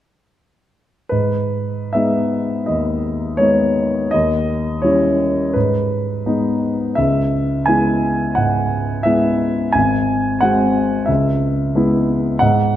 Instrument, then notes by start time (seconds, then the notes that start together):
grand piano
1.09 G#2 B4
1.93 G#3 B3 D#4 E5
2.66 D#2 D#5
3.37 G#3 B3 D#4 C#5
4.11 D#2 D#5
4.82 G3 C#4 E4 C#5
5.54 G#2 B4
6.26 G#3 B3 D#4
6.95 C#2 E5
7.66 G#3 B3 E4 G#5
8.35 G#2 F#5
9.03 G#3 B3 E4 E5
9.72 G#1 G#5
10.41 G#3 C4 F#4 F#5
11.06 C#2 E5
11.75 G#3 B3 E4
12.39 G#2 F#5